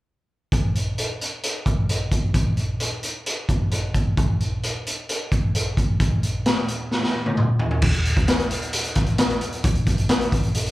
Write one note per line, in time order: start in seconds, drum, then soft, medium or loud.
0.52 kick medium
0.52 closed hi-hat medium
0.75 closed hi-hat medium
0.98 closed hi-hat medium
1.21 closed hi-hat medium
1.43 closed hi-hat medium
1.66 kick medium
1.66 closed hi-hat medium
1.89 closed hi-hat medium
2.11 kick medium
2.11 closed hi-hat medium
2.34 kick medium
2.34 closed hi-hat medium
2.57 closed hi-hat soft
2.80 closed hi-hat medium
3.03 closed hi-hat medium
3.26 closed hi-hat medium
3.49 kick medium
3.49 closed hi-hat medium
3.71 closed hi-hat medium
3.94 kick medium
3.94 closed hi-hat soft
4.17 kick medium
4.17 closed hi-hat medium
4.40 closed hi-hat soft
4.63 closed hi-hat medium
4.86 closed hi-hat medium
5.09 closed hi-hat medium
5.32 kick medium
5.32 closed hi-hat medium
5.55 closed hi-hat medium
5.77 kick medium
5.77 closed hi-hat medium
6.00 kick medium
6.00 closed hi-hat medium
6.23 closed hi-hat medium
6.46 snare medium
6.46 closed hi-hat medium
6.68 closed hi-hat medium
6.91 snare soft
7.04 snare soft
7.26 high tom soft
7.37 mid tom medium
7.59 floor tom medium
7.71 floor tom medium
7.82 kick loud
7.82 crash loud
7.94 closed hi-hat medium
8.05 closed hi-hat medium
8.16 kick medium
8.16 closed hi-hat soft
8.28 snare loud
8.28 closed hi-hat loud
8.39 closed hi-hat medium
8.51 closed hi-hat medium
8.62 closed hi-hat medium
8.73 closed hi-hat loud
8.84 closed hi-hat medium
8.95 kick loud
8.95 snare soft
8.95 closed hi-hat medium
9.06 closed hi-hat medium
9.18 snare loud
9.18 closed hi-hat loud
9.30 closed hi-hat medium
9.41 closed hi-hat medium
9.52 closed hi-hat soft
9.64 kick loud
9.64 closed hi-hat loud
9.75 closed hi-hat soft
9.86 kick medium
9.86 closed hi-hat medium
9.98 closed hi-hat medium
10.09 snare loud
10.09 closed hi-hat loud
10.21 closed hi-hat medium
10.32 kick medium
10.32 closed hi-hat medium
10.43 closed hi-hat soft
10.54 closed hi-hat loud
10.66 closed hi-hat soft